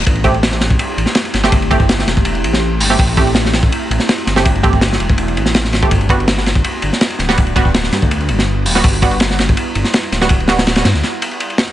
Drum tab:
RD |xxxxx-x-x-x-xxx-|xxx-x-x-xxx-----|xxxxx-x-x-x-xxx-|xxx-x-x-xxx-x-x-|
HH |----------------|--------------o-|----------------|----------------|
SD |----ooo----oo-oo|----ooo----o---o|----ooo----oo-oo|----oo-----oooo-|
BD |o-o----o--------|o-oo---o--------|o-o----o--------|o-oo---o-------o|

RD |xxxxx-x-x-x-xxx-|xxx-x-x-xxx-----|xxxxx-x-x-x-xxx-|xxxxxxx-x-xxxxxx|
HH |----------------|--------------o-|----------------|----------------|
SD |----ooo----oo-oo|----ooo----o---o|----ooo----oo-oo|--ooooooo-----o-|
BD |o-o----o--------|o-oo---o--------|o-o----o--------|o---------------|